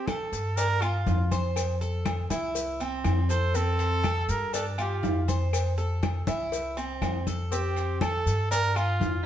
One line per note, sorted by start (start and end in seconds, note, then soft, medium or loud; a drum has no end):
0.07 0.58 A4 loud
0.07 0.56 A4 medium
0.07 cowbell medium
0.07 high conga medium
0.07 low timbale soft
0.07 low agogo medium
0.07 claves medium
0.07 maracas soft
0.32 1.03 G2 medium
0.32 cowbell medium
0.32 high conga soft
0.32 maracas medium
0.57 0.81 D4 medium
0.57 0.83 A#4 loud
0.57 cowbell loud
0.57 high conga soft
0.57 low agogo medium
0.57 maracas medium
0.82 1.30 F4 medium
0.82 1.32 F4 loud
0.82 high conga soft
0.82 low agogo loud
0.82 claves medium
0.82 maracas soft
1.07 2.24 F2 loud
1.07 cowbell medium
1.07 high conga loud
1.07 low timbale medium
1.07 maracas soft
1.31 1.80 C5 medium
1.31 cowbell medium
1.31 high conga medium
1.31 low agogo medium
1.31 maracas medium
1.56 cowbell loud
1.56 high conga soft
1.56 low agogo medium
1.56 claves medium
1.56 maracas medium
1.81 2.29 A4 medium
1.81 high conga soft
1.81 maracas soft
2.05 cowbell medium
2.05 high conga loud
2.05 low timbale medium
2.05 low agogo loud
2.05 claves medium
2.05 maracas soft
2.30 3.01 C2 medium
2.30 2.79 E4 medium
2.30 cowbell medium
2.30 high conga medium
2.30 low agogo medium
2.30 maracas medium
2.55 cowbell loud
2.55 high conga soft
2.55 maracas medium
2.80 3.28 C4 medium
2.80 high conga soft
2.80 low agogo medium
2.80 maracas soft
3.04 4.22 F2 loud
3.04 cowbell medium
3.04 high conga medium
3.04 low timbale medium
3.04 low agogo loud
3.04 claves medium
3.04 maracas soft
3.29 3.54 A4 medium
3.29 3.57 C5 loud
3.29 cowbell medium
3.29 maracas medium
3.54 4.03 C4 medium
3.54 4.31 A4 loud
3.54 cowbell loud
3.54 high conga soft
3.54 maracas medium
3.79 cowbell medium
3.79 high conga soft
3.79 low agogo medium
3.79 maracas soft
4.04 4.52 A4 medium
4.04 cowbell medium
4.04 high conga medium
4.04 low timbale medium
4.04 low agogo loud
4.04 claves medium
4.04 maracas soft
4.28 4.99 G2 medium
4.28 4.54 A#4 loud
4.28 cowbell medium
4.28 high conga soft
4.28 maracas medium
4.53 4.78 D4 medium
4.53 4.66 A4 loud
4.53 cowbell loud
4.53 high conga soft
4.53 low agogo medium
4.53 maracas loud
4.78 5.27 F4 medium
4.78 5.26 G4 medium
4.78 high conga soft
4.78 low agogo loud
4.78 claves medium
4.78 maracas soft
5.03 6.21 F2 loud
5.03 cowbell medium
5.03 high conga medium
5.03 low timbale medium
5.03 maracas soft
5.28 5.76 C5 medium
5.28 cowbell medium
5.28 high conga medium
5.28 low agogo medium
5.28 maracas medium
5.53 cowbell loud
5.53 high conga soft
5.53 low agogo loud
5.53 claves medium
5.53 maracas medium
5.78 6.26 A4 medium
5.78 high conga soft
5.78 maracas soft
6.03 cowbell medium
6.03 high conga loud
6.03 low timbale medium
6.03 low agogo medium
6.03 claves medium
6.03 maracas soft
6.27 6.98 C2 medium
6.27 6.76 E4 medium
6.27 cowbell medium
6.27 high conga loud
6.27 low agogo medium
6.27 maracas medium
6.52 cowbell loud
6.52 high conga soft
6.52 maracas medium
6.77 7.25 C4 medium
6.77 high conga soft
6.77 low agogo medium
6.77 maracas soft
7.01 8.19 F2 loud
7.01 cowbell medium
7.01 high conga medium
7.01 low timbale medium
7.01 low agogo loud
7.01 claves medium
7.01 maracas soft
7.27 7.51 A4 medium
7.27 cowbell medium
7.27 high conga medium
7.27 maracas medium
7.52 8.00 C4 medium
7.52 7.98 G4 loud
7.52 cowbell loud
7.52 high conga soft
7.52 maracas medium
7.76 cowbell medium
7.76 high conga soft
7.76 low agogo medium
7.76 maracas soft
8.01 8.50 A4 medium
8.01 8.48 A4 loud
8.01 cowbell medium
8.01 high conga loud
8.01 low timbale medium
8.01 low agogo loud
8.01 claves medium
8.01 maracas soft
8.26 8.97 G2 loud
8.26 cowbell medium
8.26 high conga soft
8.26 maracas medium
8.51 8.75 D4 medium
8.51 8.78 A#4 loud
8.51 cowbell loud
8.51 high conga soft
8.51 low agogo medium
8.51 maracas medium
8.76 9.24 F4 medium
8.76 9.26 F4 loud
8.76 high conga soft
8.76 low agogo loud
8.76 claves medium
8.76 maracas soft
9.00 9.26 F2 loud
9.00 cowbell medium
9.00 high conga medium
9.00 low timbale medium
9.00 maracas soft